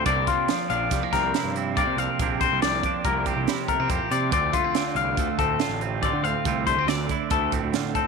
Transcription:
0.00 0.49 D3 medium
0.06 0.24 C2 medium
0.06 0.49 C3 medium
0.06 0.91 A#3 medium
0.06 0.29 C4 medium
0.06 0.71 D4 medium
0.06 0.28 D5 medium
0.06 kick loud
0.06 closed hi-hat medium
0.27 1.13 C4 soft
0.27 0.70 F4 medium
0.27 kick medium
0.27 closed hi-hat medium
0.48 2.63 F3 medium
0.48 snare medium
0.48 closed hi-hat medium
0.70 0.88 A#1 medium
0.70 1.35 D4 soft
0.70 1.13 F5 medium
0.70 closed hi-hat medium
0.91 1.00 C2 medium
0.91 1.03 G3 soft
0.91 kick medium
0.91 snare soft
0.91 closed hi-hat medium
1.03 1.77 A#3 soft
1.13 1.31 C2 medium
1.13 1.76 C3 medium
1.13 1.57 C4 soft
1.13 1.55 A#4 medium
1.13 kick medium
1.13 snare soft
1.13 closed hi-hat medium
1.34 1.77 E4 soft
1.34 snare medium
1.34 closed hi-hat medium
1.44 1.81 G2 medium
1.56 1.78 C4 medium
1.56 closed hi-hat medium
1.77 2.17 C3 medium
1.77 2.18 A#3 medium
1.77 1.99 C4 medium
1.77 2.23 D4 medium
1.77 1.98 D5 medium
1.77 kick medium
1.77 closed hi-hat medium
1.87 1.96 C3 medium
1.97 2.06 C2 medium
1.97 2.22 C4 soft
1.97 2.40 F5 medium
1.97 closed hi-hat soft
2.19 2.47 A#1 medium
2.19 2.63 C3 medium
2.19 3.06 A#3 medium
2.19 2.43 C4 medium
2.19 2.85 D4 medium
2.19 kick loud
2.19 closed hi-hat medium
2.41 3.27 C4 soft
2.41 2.62 C5 medium
2.41 kick medium
2.41 closed hi-hat soft
2.52 2.61 C2 medium
2.62 2.81 C2 medium
2.62 4.75 F3 medium
2.62 3.05 D5 medium
2.62 snare medium
2.62 closed hi-hat medium
2.83 3.48 D4 medium
2.83 kick medium
2.83 closed hi-hat medium
3.05 3.32 C2 medium
3.05 4.31 A#3 medium
3.05 3.26 A#4 medium
3.05 kick medium
3.05 closed hi-hat medium
3.26 3.89 C3 medium
3.26 3.69 C4 medium
3.26 3.68 G4 medium
3.26 kick medium
3.26 closed hi-hat soft
3.37 3.46 C2 medium
3.48 3.66 C3 medium
3.48 4.31 E4 soft
3.48 snare medium
3.48 closed hi-hat medium
3.68 3.80 A3 medium
3.68 3.90 A#4 medium
3.68 kick medium
3.68 closed hi-hat medium
3.79 3.89 C3 medium
3.79 4.31 C4 soft
3.89 3.99 F2 medium
3.89 4.11 A#2 medium
3.89 4.11 G4 medium
3.89 kick medium
3.89 closed hi-hat medium
4.11 4.29 C3 medium
4.11 4.33 C3 medium
4.11 4.32 D5 medium
4.11 closed hi-hat medium
4.31 6.02 D2 medium
4.31 4.51 D2 medium
4.31 4.53 A3 medium
4.31 4.53 C4 medium
4.31 5.61 F4 medium
4.31 4.54 D5 medium
4.31 kick medium
4.31 closed hi-hat medium
4.53 4.64 A3 soft
4.53 4.96 F4 medium
4.53 kick medium
4.53 closed hi-hat medium
4.64 5.38 C4 soft
4.75 6.87 D3 medium
4.75 snare loud
4.75 closed hi-hat medium
4.95 5.14 C2 medium
4.95 5.39 F5 medium
4.95 closed hi-hat medium
5.17 5.27 D2 medium
5.17 6.03 A3 soft
5.17 kick medium
5.17 closed hi-hat medium
5.39 5.57 D2 medium
5.39 6.46 A2 medium
5.39 5.82 C4 soft
5.39 5.81 A4 medium
5.39 kick medium
5.39 closed hi-hat medium
5.60 6.05 F4 medium
5.60 snare loud
5.60 closed hi-hat medium
5.69 6.07 A1 medium
5.81 6.04 C4 medium
5.81 closed hi-hat soft
6.02 6.45 D2 medium
6.02 6.44 A3 soft
6.02 6.24 C4 medium
6.02 6.48 F4 medium
6.02 6.24 D5 medium
6.02 kick medium
6.02 closed hi-hat medium
6.13 6.23 D3 medium
6.23 6.33 D2 medium
6.23 6.47 C4 soft
6.23 6.66 F5 medium
6.23 closed hi-hat soft
6.45 6.73 C2 medium
6.45 8.07 D2 medium
6.45 6.66 A3 soft
6.45 6.67 C4 medium
6.45 7.11 F4 medium
6.45 kick loud
6.45 closed hi-hat medium
6.67 6.79 A3 medium
6.67 6.88 C5 medium
6.67 kick medium
6.67 closed hi-hat medium
6.77 6.86 D2 medium
6.77 7.52 C4 soft
6.88 7.07 D2 medium
6.88 8.07 D3 medium
6.88 7.31 D5 medium
6.88 snare medium
6.88 closed hi-hat medium
7.09 7.74 E4 medium
7.09 kick medium
7.09 closed hi-hat medium
7.30 7.58 D2 medium
7.30 8.07 A3 soft
7.30 7.52 A4 medium
7.30 kick loud
7.30 closed hi-hat medium
7.52 8.07 A2 medium
7.52 7.96 C4 soft
7.52 kick medium
7.52 closed hi-hat medium
7.63 7.72 D2 medium
7.74 7.92 D3 medium
7.74 8.07 F4 soft
7.74 snare loud
7.74 closed hi-hat medium
7.95 8.07 C4 medium
7.95 8.07 A4 medium
7.95 kick medium
7.95 closed hi-hat medium

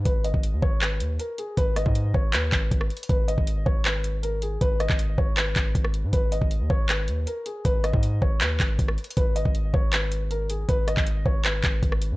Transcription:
0.05 0.33 G#1 loud
0.05 0.23 B4 loud
0.05 kick loud
0.05 closed hi-hat medium
0.24 0.60 D#5 medium
0.24 closed hi-hat medium
0.34 0.54 G#1 loud
0.34 kick medium
0.43 closed hi-hat medium
0.53 0.62 D#2 loud
0.62 1.02 G#1 loud
0.62 0.80 C#5 medium
0.62 kick loud
0.81 1.17 B4 medium
0.81 clap loud
0.81 closed hi-hat medium
1.00 1.18 D#2 loud
1.00 closed hi-hat medium
1.19 1.37 A#4 medium
1.19 closed hi-hat medium
1.38 1.56 G#4 medium
1.38 closed hi-hat medium
1.57 1.85 G#1 loud
1.57 1.75 B4 loud
1.57 kick loud
1.57 closed hi-hat medium
1.76 2.12 D#5 medium
1.76 cross-stick medium
1.76 closed hi-hat medium
1.86 2.13 G#2 loud
1.86 kick medium
1.95 closed hi-hat medium
2.14 2.35 G#1 loud
2.14 2.32 C#5 medium
2.14 kick loud
2.33 2.51 D#2 loud
2.33 3.05 B4 medium
2.33 clap loud
2.33 closed hi-hat medium
2.52 2.70 G#1 loud
2.52 kick medium
2.52 clap medium
2.52 closed hi-hat medium
2.71 2.89 G#1 loud
2.71 kick loud
2.71 closed hi-hat medium
2.81 cross-stick medium
2.90 closed hi-hat medium
2.97 closed hi-hat medium
3.03 closed hi-hat medium
3.09 3.37 G#1 loud
3.09 3.27 B4 loud
3.09 kick loud
3.09 closed hi-hat medium
3.28 3.64 D#5 medium
3.28 closed hi-hat medium
3.38 3.65 G#1 loud
3.38 kick medium
3.47 closed hi-hat medium
3.66 4.57 G#1 loud
3.66 3.84 C#5 medium
3.66 kick loud
3.85 4.21 B4 medium
3.85 clap loud
3.85 closed hi-hat medium
4.04 closed hi-hat medium
4.23 4.41 A#4 medium
4.23 closed hi-hat medium
4.42 4.60 G#4 medium
4.42 closed hi-hat medium
4.61 4.88 G#1 loud
4.61 4.79 B4 loud
4.61 kick loud
4.61 closed hi-hat medium
4.80 5.16 D#5 medium
4.80 cross-stick medium
4.80 closed hi-hat medium
4.89 5.17 G#1 loud
4.89 kick medium
4.89 clap medium
4.99 closed hi-hat medium
5.18 5.55 G#1 loud
5.18 5.36 C#5 medium
5.18 kick loud
5.37 6.09 B4 medium
5.37 clap loud
5.37 closed hi-hat medium
5.56 5.74 G#1 loud
5.56 kick medium
5.56 clap medium
5.56 closed hi-hat medium
5.75 6.05 G#1 loud
5.75 kick medium
5.75 closed hi-hat medium
5.85 cross-stick medium
5.94 closed hi-hat medium
6.04 6.13 G#2 medium
6.13 6.40 G#1 loud
6.13 6.31 B4 loud
6.13 kick loud
6.13 closed hi-hat medium
6.32 6.68 D#5 medium
6.32 closed hi-hat medium
6.42 6.62 G#1 loud
6.42 kick medium
6.51 closed hi-hat medium
6.60 6.70 D#2 loud
6.70 7.09 G#1 loud
6.70 6.88 C#5 medium
6.70 kick loud
6.89 7.25 B4 medium
6.89 clap loud
6.89 closed hi-hat medium
7.08 7.26 D#2 loud
7.08 closed hi-hat medium
7.27 7.45 A#4 medium
7.27 closed hi-hat medium
7.46 7.64 G#4 medium
7.46 closed hi-hat medium
7.65 7.92 G#1 loud
7.65 7.83 B4 loud
7.65 kick loud
7.65 closed hi-hat medium
7.84 8.20 D#5 medium
7.84 cross-stick medium
7.84 closed hi-hat medium
7.93 8.21 G#2 loud
7.93 kick medium
8.03 closed hi-hat medium
8.22 8.42 G#1 loud
8.22 8.40 C#5 medium
8.22 kick loud
8.41 8.59 D#2 loud
8.41 9.13 B4 medium
8.41 clap loud
8.41 closed hi-hat medium
8.60 8.78 G#1 loud
8.60 kick medium
8.60 clap loud
8.60 closed hi-hat medium
8.79 8.97 G#1 loud
8.79 kick medium
8.79 closed hi-hat medium
8.88 cross-stick medium
8.98 closed hi-hat medium
9.04 closed hi-hat medium
9.10 closed hi-hat medium
9.17 9.44 G#1 loud
9.17 9.34 B4 loud
9.17 kick loud
9.17 closed hi-hat medium
9.36 9.71 D#5 medium
9.36 closed hi-hat medium
9.45 9.73 G#1 loud
9.45 kick medium
9.55 closed hi-hat medium
9.74 10.65 G#1 loud
9.74 9.91 C#5 medium
9.74 kick loud
9.93 10.28 B4 medium
9.93 clap loud
9.93 closed hi-hat medium
10.12 closed hi-hat medium
10.31 10.48 A#4 medium
10.31 closed hi-hat medium
10.50 10.67 G#4 medium
10.50 closed hi-hat medium
10.69 10.96 G#1 loud
10.69 10.86 B4 loud
10.69 kick loud
10.69 closed hi-hat medium
10.88 11.23 D#5 medium
10.88 cross-stick medium
10.88 closed hi-hat medium
10.97 11.25 G#1 loud
10.97 kick medium
10.97 clap medium
11.07 closed hi-hat medium
11.26 11.62 G#1 loud
11.26 11.43 C#5 medium
11.26 kick loud
11.44 12.16 B4 medium
11.44 clap loud
11.44 closed hi-hat medium
11.64 11.82 G#1 loud
11.64 kick medium
11.64 clap medium
11.64 closed hi-hat medium
11.83 12.13 G#1 loud
11.83 kick medium
11.83 closed hi-hat medium
11.92 cross-stick medium
12.02 closed hi-hat medium
12.11 12.16 G#2 medium

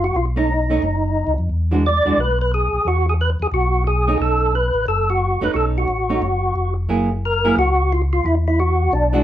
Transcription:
0.00 0.12 F#1 medium
0.04 0.16 F#4 medium
0.15 0.79 B1 medium
0.15 0.26 F4 medium
0.36 0.47 A3 medium
0.36 0.48 C#4 medium
0.36 0.48 D#4 medium
0.36 1.34 D#4 medium
0.70 0.81 A3 medium
0.70 0.81 C#4 medium
0.70 0.82 D#4 medium
0.82 1.24 F#1 medium
1.27 1.38 C#2 medium
1.38 1.49 F2 medium
1.49 2.01 E2 medium
1.71 1.82 E3 medium
1.71 1.82 G#3 medium
1.71 1.83 D4 medium
1.71 1.83 F#4 medium
1.86 2.20 D5 loud
2.05 2.11 E2 soft
2.05 2.16 E3 medium
2.05 2.16 G#3 medium
2.05 2.17 D4 medium
2.05 2.17 F#4 medium
2.17 2.68 B1 medium
2.17 2.39 B4 medium
2.41 2.52 B4 medium
2.54 2.87 G#4 medium
2.73 2.79 B1 soft
2.85 3.36 E2 medium
2.85 3.06 F#4 medium
3.09 3.14 G#4 medium
3.21 3.30 B4 medium
3.40 3.46 E2 soft
3.40 3.47 G#4 medium
3.52 4.16 B1 medium
3.52 3.84 F#4 medium
3.87 4.18 G#4 medium
4.07 4.51 A3 medium
4.07 4.51 C#4 medium
4.07 4.52 D#4 medium
4.20 4.71 B1 medium
4.20 4.55 A4 medium
4.55 4.86 B4 medium
4.74 4.86 A1 medium
4.87 5.38 F#1 medium
4.87 5.10 A4 medium
5.10 5.44 F#4 medium
5.41 5.48 F#1 soft
5.41 5.85 A3 medium
5.41 5.86 C#4 medium
5.41 5.86 D#4 medium
5.41 5.52 B4 medium
5.54 5.86 B1 medium
5.54 5.56 F#4 medium
5.54 5.66 A4 medium
5.78 6.74 F#4 medium
5.88 6.19 A1 medium
6.09 6.21 A3 medium
6.09 6.21 C#4 medium
6.09 6.21 D#4 medium
6.22 6.53 F#1 medium
6.56 6.87 F1 medium
6.89 7.53 F#1 medium
6.89 7.08 F#3 soft
6.89 7.08 A#3 medium
6.89 7.09 E4 medium
6.89 7.09 G#4 medium
7.25 7.56 A#4 loud
7.44 7.55 F#3 medium
7.44 7.56 A#3 medium
7.44 7.56 E4 medium
7.44 7.56 G#4 medium
7.56 8.21 C#2 medium
7.56 7.92 F#4 medium
7.93 8.02 F4 medium
8.13 8.25 F4 medium
8.24 8.88 E2 medium
8.24 8.35 E4 medium
8.48 8.59 E4 medium
8.60 8.94 F#4 medium
8.92 9.24 B1 medium
8.92 9.24 D4 medium
9.13 9.24 E3 medium
9.13 9.24 G#3 medium
9.13 9.24 D4 medium
9.13 9.24 F#4 medium

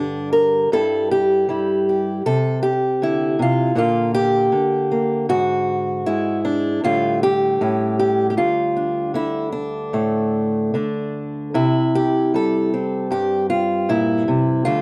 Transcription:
0.00 0.67 G2 medium
0.00 0.72 D3 medium
0.00 0.72 G3 soft
0.00 0.32 D4 medium
0.33 0.72 A#4 medium
0.72 2.21 G2 medium
0.72 1.48 G3 soft
0.72 1.49 E4 soft
0.72 1.11 A4 medium
1.11 1.88 G4 medium
1.49 2.21 G3 medium
1.49 2.21 E4 soft
1.89 2.22 G4 soft
2.26 3.38 C3 medium
2.26 2.62 A4 loud
2.63 3.38 G4 medium
3.02 3.39 D3 medium
3.02 3.77 E4 medium
3.39 3.75 C3 medium
3.39 3.77 F4 medium
3.75 4.52 A#2 medium
3.75 4.51 D3 soft
3.75 4.90 A#3 soft
3.75 4.14 F4 medium
4.14 5.29 G4 loud
4.52 6.05 D3 medium
4.92 5.25 A#3 soft
5.29 6.78 G#2 medium
5.29 6.44 F#4 loud
6.06 6.79 G#3 medium
6.06 6.83 E4 medium
6.45 6.83 D4 medium
6.84 7.60 A2 medium
6.84 7.61 D3 medium
6.84 9.93 G3 medium
6.84 7.61 A3 soft
6.84 7.22 F4 medium
7.23 7.98 G4 loud
7.61 8.37 A2 medium
7.61 8.33 C#4 soft
7.99 8.29 G4 medium
8.30 8.37 G4 medium
8.37 11.55 D2 medium
8.37 9.15 F4 medium
8.76 9.51 D4 soft
9.14 10.73 D3 medium
9.14 9.52 E4 medium
9.52 10.73 D4 medium
9.93 10.74 A2 medium
9.93 11.50 A3 soft
10.74 11.55 D3 medium
10.74 11.50 D4 soft
11.54 13.10 C3 medium
11.54 12.72 E4 medium
11.95 12.34 G4 medium
12.34 14.60 G3 medium
12.34 13.11 A4 medium
12.74 14.61 C4 soft
13.11 14.60 G2 medium
13.11 13.49 G4 medium
13.50 13.88 F4 medium
13.89 14.27 A#2 medium
13.89 14.65 E4 medium
14.28 14.65 C3 medium
14.65 14.82 D2 medium
14.65 14.82 D3 soft
14.65 14.82 G3 soft
14.65 14.82 A3 soft
14.65 14.82 F4 medium

